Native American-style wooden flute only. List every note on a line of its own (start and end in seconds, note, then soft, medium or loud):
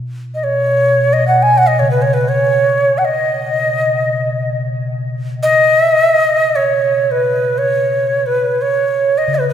0.35 0.45 D#5 soft
0.44 1.15 C#5 medium
1.13 1.27 D#5 medium
1.27 1.44 F#5 medium
1.42 1.59 G#5 medium
1.58 1.68 F#5 medium
1.67 1.81 D#5 medium
1.79 1.89 C#5 medium
1.91 2.04 B4 medium
2.02 2.15 C#5 medium
2.14 2.30 B4 medium
2.29 3.00 C#5 medium
2.98 3.07 F#5 soft
3.05 4.54 D#5 medium
5.43 6.57 D#5 medium
6.56 7.13 C#5 medium
7.11 7.60 B4 medium
7.58 8.28 C#5 medium
8.26 8.63 B4 medium
8.62 9.19 C#5 medium
9.18 9.36 D#5 medium
9.35 9.48 B4 medium
9.49 9.53 B4 medium